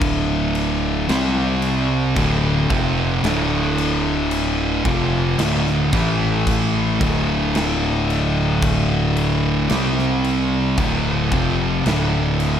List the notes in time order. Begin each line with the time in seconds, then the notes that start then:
Already playing: D1 D2 A2 D3
0.01 kick, crash
0.55 crash
1.09 C2 C3 G3 C4, snare, crash
1.62 crash
2.16 D1 D2 A2 D3, kick, crash
2.70 F1 F2 C3 F3, kick, crash
3.24 D1 D2 A2 D3, snare, crash
3.78 crash
4.31 crash
4.85 F1 F2 C3 F3, kick, crash
5.39 D1 D2 A2 D3, snare, crash
5.67 snare
5.93 A1 A2 E3 A3, kick, crash
6.47 kick, crash
7.00 D1 D2 A2 D3, kick, crash
7.55 snare, crash
8.10 crash
8.62 kick, crash
9.17 crash
9.70 C2 C3 G3 C4, snare, crash
9.99 snare
10.24 crash
10.78 D1 D2 A2 D3, kick, crash
11.32 F1 F2 C3 F3, kick, crash
11.85 D1 D2 A2 D3, snare, crash
12.40 crash